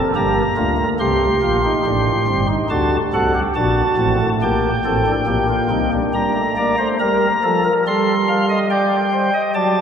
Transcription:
pipe organ
Already playing: C4 A4
0.15 G1 G2 A#3 G4 A#5
0.57 D2 D3 A3 F4
0.78 A#3
0.99 C2 C3 A3 G4 C6
1.42 A#1 A#2 F4
1.64 D#4
1.86 A1 A2 D4
2.27 G1 G2 C4
2.48 D#4
2.70 D2 D3 D4 F#4 A5
3.14 C2 C3 F#4 A4 F#5
3.34 G4
3.55 A#1 A#2 D4 F#4 A5
3.97 A1 A2 C4
4.20 A3
4.42 A#1 A#2 A#3 G4 G5
4.84 A1 A2 C4 A4
5.06 D4
5.27 A#1 A#2 A#3 G4
5.50 F4
5.70 C2 C3 D#4
5.93 D4
6.14 G3 D4 A#5
6.34 A3
6.57 A#3 D5
6.78 A3 C5
7.00 G3 A#4 A#5
7.43 F3 A4
7.64 A#4
7.87 G3 A4 C6
8.28 F5
8.49 D#5
8.70 D5 G5
9.12 C5
9.34 D#5
9.55 F#3 D5 A5

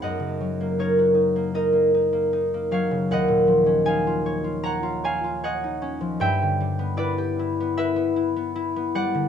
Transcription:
harp
Already playing: C#4 D#4 C#5
0.02 F#2 D#5 F#5
0.19 C#3
0.41 F#3
0.60 A#3
0.79 D#4 A#4 C#5
0.99 F#4
1.15 D#4
1.36 A#3
1.54 D#4 A#4 D#5
1.73 A#3
1.94 D#4
2.13 A#3
2.33 D#4
2.54 A#3
2.71 F#3 C#5 F5
2.91 C#3
3.11 D#2 D#5 F#5
3.28 A#2
3.47 F3
3.66 C#4
3.85 D#4 F5 G#5
4.07 F4
4.26 C#5
4.44 F4
4.63 C#5 F#5 A#5
4.83 F4
5.04 C#5 F5 G#5
5.24 F4
5.44 C#5 D#5 F#5
5.64 D#4
5.82 C#4
6.01 F3
6.20 G2 E5 G5
6.42 D3
6.60 G3
6.79 B3
6.97 E4 B4 D5
7.18 G4
7.39 E4
7.60 B3
7.77 E4 B4 E5
7.96 B3
8.16 E4
8.36 B3
8.56 E4
8.76 B3
8.95 G3 D5 F#5
9.15 D3

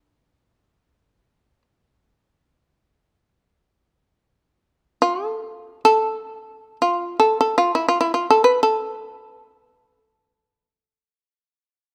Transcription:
shamisen
Already playing: D4
5.02 F4
5.28 A4
5.85 A4
6.82 F4
7.20 A4
7.41 A4
7.58 F4
7.75 E4
7.88 F4
8.01 E4
8.14 F4
8.30 A4
8.44 B4
8.63 A4

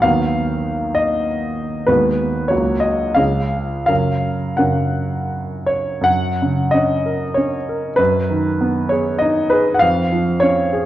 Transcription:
grand piano
0.02 D#2 F#3 B3 F#4 F5
0.95 D#5
1.86 D#2 G#3 B3 F#4 B4
2.48 C#2 F#3 A#3 F#4 C#5
2.80 D#5
3.15 C#2 C#3 C#4 G#4 F5
3.86 F#2 C#3 C#4 A#4 F5
4.57 F#2 C#3 C#4 A#4 F#5
5.67 C#5
6.01 F#2 F#5
6.42 C#3
6.71 C#4 D#5
7.06 A#4
7.34 C#4 C#5
7.69 A#4
7.96 F#2 B4
8.30 D#3
8.61 B3
8.89 G#4 C#5
9.19 D#4 D#5
9.50 G#4 B4
9.75 F#5
9.79 F2 F5
10.13 F3
10.40 C#4 C#5
10.73 G#4

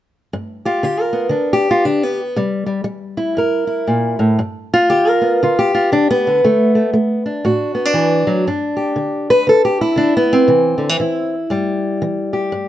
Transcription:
steel-string acoustic guitar
0.33 G2
0.65 F4 G4
0.83 D3 G4
1.01 A#4
1.13 B3
1.29 D3 D4
1.53 G4
1.71 F4
1.85 D3 D4
2.03 B3
2.36 C3 G3
2.66 G3
2.84 G3
3.17 E4
3.37 G2 A#4
3.67 E4
3.87 A#2
4.19 A2
4.39 G2
4.74 F4
4.90 D3 G4
5.09 A#4
5.21 B3
5.43 D3 F4
5.59 G4
5.75 F4
5.92 D3 D4
6.11 B3
6.27 D3
6.44 D3 A3
6.75 A3
6.94 A3
7.26 D4
7.45 A2 F#4
7.75 B3
7.85 D4
7.94 E3
8.27 F#3
8.47 G2 D4
8.77 G4
8.96 D3
9.30 B4
9.47 D3 A4
9.65 G4
9.81 E4
9.96 D3 D4
10.17 B3
10.33 C4
10.48 C3 E3
10.78 D3
10.89 E3
11.00 E3 E4
11.50 G2 G3
12.02 E3
12.33 G4
12.52 G2

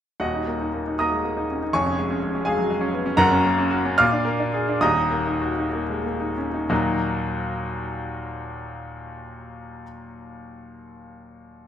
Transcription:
grand piano
0.20 D#1 D#2 F#4 D#5 F#5
0.34 D#4
0.47 A#3
0.61 D#4
0.74 A#3
0.88 D#4
0.99 A#3 D#5 A#5 D#6
1.12 G#3
1.25 A#3
1.37 D#4
1.51 C#4
1.63 D#4
1.73 F1 F2 C#5 G#5 C#6
1.86 C#4
1.98 G#3
2.10 C#4
2.23 G#3
2.35 C#4
2.45 G#3 G#4 F5 G#5
2.57 F#3
2.70 G#3
2.81 C#4
2.94 B3
3.06 C#4
3.17 F#1 F#2 A#4 F#5 A#5
3.31 C#4
3.45 A#3
3.58 C#4
3.71 F#4
3.85 C#4
3.98 A#2 F5 D6 F6
4.12 D4
4.25 A#3
4.40 D4
4.54 G#4
4.69 D4
4.81 D#1 D#2 D#5 A#5 D#6
4.96 D#4
5.11 A#3
5.27 D#4
5.41 F#4
5.58 D#4
5.73 A#3
5.90 G#3
6.04 A#3
6.20 D#4
6.37 C#4
6.54 D#4
6.69 D#2 A#2 F#3 A#3 D#4 F#4

